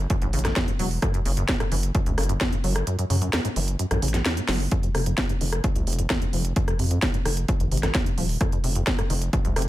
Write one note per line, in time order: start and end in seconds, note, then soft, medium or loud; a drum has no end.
0.10 0.16 F#2 medium
0.10 kick loud
0.10 closed hi-hat medium
0.22 0.31 A1 medium
0.22 0.28 F#2 medium
0.22 closed hi-hat soft
0.33 0.53 A1 medium
0.33 0.40 C#3 medium
0.33 open hi-hat loud
0.39 closed hi-hat medium
0.45 0.49 F#2 medium
0.45 cross-stick medium
0.45 snare soft
0.45 closed hi-hat soft
0.56 0.69 E2 medium
0.56 kick loud
0.56 snare loud
0.56 closed hi-hat medium
0.68 0.72 A2 loud
0.68 closed hi-hat soft
0.79 0.99 E1 medium
0.79 0.89 F#3 medium
0.79 open hi-hat loud
0.91 open hi-hat medium
1.02 1.12 F#2 medium
1.02 kick loud
1.02 cross-stick medium
1.02 closed hi-hat medium
1.14 1.20 F#2 medium
1.14 closed hi-hat medium
1.25 1.45 F#1 medium
1.25 1.32 C#3 medium
1.25 open hi-hat loud
1.37 1.43 F#2 medium
1.37 closed hi-hat medium
1.48 1.55 E2 medium
1.48 kick loud
1.48 snare loud
1.48 closed hi-hat medium
1.60 1.64 G#2 medium
1.60 cross-stick medium
1.60 closed hi-hat medium
1.72 1.91 F#1 loud
1.72 1.75 E3 medium
1.72 open hi-hat loud
1.83 closed hi-hat medium
1.95 2.01 F#2 medium
1.95 kick loud
1.95 closed hi-hat medium
2.06 2.16 C#2 medium
2.06 2.13 F#2 medium
2.06 closed hi-hat medium
2.18 2.37 F#1 loud
2.18 2.24 C#3 medium
2.18 cross-stick medium
2.18 open hi-hat loud
2.23 closed hi-hat medium
2.29 2.33 F#2 medium
2.29 closed hi-hat soft
2.41 2.54 E2 medium
2.41 kick loud
2.41 snare loud
2.41 closed hi-hat medium
2.52 2.56 A2 loud
2.52 closed hi-hat medium
2.64 2.84 F#1 loud
2.64 2.74 F#3 medium
2.64 open hi-hat loud
2.76 cross-stick medium
2.76 closed hi-hat medium
2.87 2.97 F#2 medium
2.87 closed hi-hat medium
2.99 3.05 F#2 medium
2.99 closed hi-hat medium
3.10 3.30 F#2 loud
3.10 3.16 C#3 medium
3.10 open hi-hat loud
3.22 3.28 F#2 medium
3.22 closed hi-hat medium
3.33 3.40 E2 medium
3.33 cross-stick medium
3.33 snare loud
3.33 closed hi-hat medium
3.45 3.49 G#2 medium
3.45 closed hi-hat medium
3.56 3.76 F#1 loud
3.56 3.60 E3 medium
3.56 open hi-hat loud
3.68 closed hi-hat medium
3.79 3.86 F#2 medium
3.79 closed hi-hat medium
3.91 4.01 A1 medium
3.91 3.97 F#2 medium
3.91 cross-stick medium
3.91 closed hi-hat medium
4.02 4.22 A1 medium
4.02 4.09 C#3 medium
4.02 open hi-hat loud
4.08 closed hi-hat medium
4.14 4.18 F#2 medium
4.14 snare soft
4.14 closed hi-hat medium
4.25 4.38 E2 medium
4.25 snare loud
4.25 closed hi-hat medium
4.37 4.41 A2 loud
4.37 closed hi-hat medium
4.49 4.68 F#1 loud
4.49 4.58 F#3 medium
4.49 snare medium
4.49 open hi-hat loud
4.60 open hi-hat medium
4.72 4.81 F2 medium
4.72 kick loud
4.72 closed hi-hat medium
4.83 4.90 F2 medium
4.83 closed hi-hat medium
4.95 5.14 F1 medium
4.95 5.01 C3 medium
4.95 cross-stick medium
4.95 open hi-hat loud
5.06 5.13 F2 medium
5.06 closed hi-hat medium
5.18 5.24 D#2 medium
5.18 kick loud
5.18 snare loud
5.18 closed hi-hat medium
5.29 5.33 G2 medium
5.29 closed hi-hat medium
5.41 5.61 F1 loud
5.41 5.45 D#3 medium
5.41 open hi-hat loud
5.53 cross-stick medium
5.53 closed hi-hat medium
5.64 5.70 F2 medium
5.64 kick loud
5.64 closed hi-hat medium
5.76 5.85 C2 medium
5.76 5.82 F2 medium
5.76 closed hi-hat medium
5.87 6.07 F1 loud
5.87 5.93 C3 medium
5.87 open hi-hat loud
5.93 closed hi-hat medium
5.99 6.02 F2 medium
5.99 closed hi-hat medium
6.10 6.23 D#2 medium
6.10 kick loud
6.10 cross-stick medium
6.10 snare loud
6.10 closed hi-hat medium
6.22 6.26 G#2 loud
6.22 closed hi-hat medium
6.33 6.53 F1 loud
6.33 6.43 F3 medium
6.33 open hi-hat loud
6.45 closed hi-hat medium
6.56 6.66 F2 medium
6.56 kick loud
6.56 closed hi-hat medium
6.68 6.74 F2 medium
6.68 cross-stick medium
6.68 closed hi-hat medium
6.79 6.99 F2 loud
6.79 6.86 C3 medium
6.79 open hi-hat loud
6.91 6.97 F2 medium
6.91 closed hi-hat medium
7.02 7.09 D#2 medium
7.02 kick loud
7.02 snare loud
7.02 closed hi-hat medium
7.14 7.18 G2 medium
7.14 closed hi-hat medium
7.25 7.45 F1 loud
7.25 7.29 D#3 medium
7.25 cross-stick medium
7.25 open hi-hat loud
7.37 closed hi-hat medium
7.48 7.55 F2 medium
7.48 kick loud
7.48 closed hi-hat medium
7.60 7.70 G#1 medium
7.60 7.67 F2 medium
7.60 closed hi-hat medium
7.72 7.91 G#1 medium
7.72 7.78 C3 medium
7.72 open hi-hat loud
7.77 closed hi-hat medium
7.83 7.87 F2 medium
7.83 cross-stick medium
7.83 snare soft
7.83 closed hi-hat medium
7.95 8.08 D#2 medium
7.95 kick loud
7.95 snare loud
7.95 closed hi-hat medium
8.06 8.10 G#2 loud
8.06 closed hi-hat medium
8.18 8.37 D#1 medium
8.18 8.27 F3 medium
8.18 open hi-hat loud
8.29 open hi-hat medium
8.41 8.50 F2 medium
8.41 kick loud
8.41 cross-stick medium
8.41 closed hi-hat medium
8.52 8.59 F2 medium
8.52 closed hi-hat medium
8.64 8.84 F1 loud
8.64 8.70 C3 medium
8.64 open hi-hat loud
8.75 8.82 F2 medium
8.75 closed hi-hat medium
8.87 8.93 D#2 medium
8.87 kick loud
8.87 snare loud
8.87 closed hi-hat medium
8.99 9.02 G2 medium
8.99 cross-stick medium
8.99 closed hi-hat medium
9.10 9.30 F1 loud
9.10 9.14 D#3 medium
9.10 open hi-hat loud
9.22 closed hi-hat medium
9.33 9.40 F2 medium
9.33 kick loud
9.33 closed hi-hat medium
9.45 9.54 C2 medium
9.45 9.51 F2 medium
9.45 closed hi-hat medium
9.56 9.69 F1 loud
9.56 9.63 C3 medium
9.56 cross-stick medium
9.56 open hi-hat loud
9.62 closed hi-hat medium